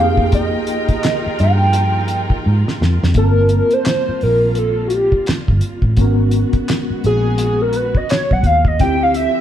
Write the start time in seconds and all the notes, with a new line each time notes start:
Already playing: A#3 F5 G5
0.00 F2 F3 D#4 F4 G4 G#4 A#4
0.17 kick
0.32 D#5, kick, closed hi-hat
0.67 closed hi-hat
0.89 kick, closed hi-hat
1.03 snare, clap, closed hi-hat
1.27 muted fingered electric bass stroke
1.39 G2 G5, closed hi-hat
1.73 closed hi-hat
2.08 closed hi-hat
2.30 kick
2.46 G#2
2.68 snare
2.81 F2, snare
3.03 F2, snare
3.14 G1 G3 A#3 C4 F4 A#4, kick, closed hi-hat
3.19 A5
3.49 closed hi-hat
3.71 C5, closed hi-hat
3.85 snare, clap, closed hi-hat
4.09 muted fingered electric bass stroke
4.21 A#1 A#4, open hi-hat
4.55 A4, closed hi-hat
4.88 F#4, closed hi-hat
4.94 G4
5.12 kick
5.26 muted fingered electric bass stroke, snare, clap, closed hi-hat
5.48 G1, kick
5.61 closed hi-hat
5.82 A1, kick
5.96 G#1 G#3 A#3 B3 C#4 F#4, kick, closed hi-hat
6.01 B3 A#4
6.31 closed hi-hat
6.53 kick, closed hi-hat
6.69 snare, clap, closed hi-hat
6.90 muted fingered electric bass stroke
7.04 A#1 G#4, closed hi-hat
7.38 closed hi-hat
7.62 A#4
7.73 B4, closed hi-hat
7.95 D#5, kick
8.09 C#5, snare, clap, closed hi-hat
8.31 B1 F#5, kick
8.44 D#2 F5, kick, closed hi-hat
8.65 D#5, kick
8.79 D2 D3 F3 C4 E4 F4 G4 E5 G5, kick, closed hi-hat
9.03 F5
9.14 E5, closed hi-hat